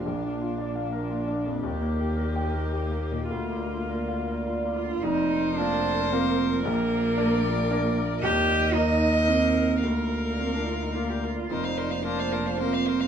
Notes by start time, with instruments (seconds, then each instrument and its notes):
Already playing: cello A#3, ambient pad A#3 F4
0.05 grand piano A#1, double bass A#1, viola D4, ambient pad D5
0.23 grand piano D4
0.41 grand piano F4
0.58 grand piano D5
0.76 grand piano F5
0.92 grand piano A#4
1.10 grand piano F4
1.28 grand piano D4
1.46 grand piano F2
1.63 grand piano D#2, double bass D#2, cello A#3, viola G4, ambient pad G4 D#5
1.81 grand piano A#3
2.00 grand piano G4
2.17 grand piano A#4
2.36 grand piano G5
2.54 grand piano A#4
2.72 grand piano G4
2.91 grand piano A#3
3.11 grand piano A#2
3.30 grand piano D2, double bass D2, viola F4, ambient pad F4 D5
3.49 grand piano A#3
3.69 grand piano F4
3.89 grand piano A#4
4.08 grand piano F5
4.27 grand piano A#4
4.47 grand piano F4
4.65 grand piano A#3
4.74 cello F4
4.84 grand piano D3
5.02 double bass F1, grand piano F2, ambient pad A#3 F4 C5, cello D#4, viola A#4, violin C5
5.58 grand piano A#3 F4 A#4, cello D4
6.12 grand piano A#3 F4 A#4, cello C4
6.65 grand piano A#1, double bass A#1, cello A#3, violin D5, ambient pad D5
7.17 grand piano A#3 D4 A#4
7.71 grand piano A#3 D4 A#4
8.23 grand piano D#2, double bass D#2, ambient pad D#4 D#5, cello G4, viola A#4, violin D#5
8.75 grand piano A#3 D#4 A#4, cello D#4
9.28 grand piano A#3 D#4 A#4, cello C4
9.83 grand piano D2, double bass D2, cello A#3, ambient pad F4 D5, violin F5
10.39 grand piano A#3 F4 A#4, cello C4
10.55 cello D4
10.67 cello F4
10.82 cello D#4
10.94 grand piano A#3 F4 A#4, cello F4
11.10 cello G4
11.24 cello F4
11.49 double bass F1, grand piano F2, ambient pad A#3 C5, cello D#4, viola A#4, violin C5
11.64 viola C5, violin F5
11.77 viola A#4, violin C5
11.91 viola C5, violin F5
12.04 grand piano A#3 F4 A#4, cello D4, viola A#4, violin C5
12.18 viola C5, violin F5
12.32 viola A#4, violin C5
12.46 viola C5, violin F5
12.59 grand piano A#3 F4 A#4, cello C4, viola A#4, violin C5
12.73 viola C5, violin F5
12.86 viola A#4, violin C5
13.00 viola C5, violin F5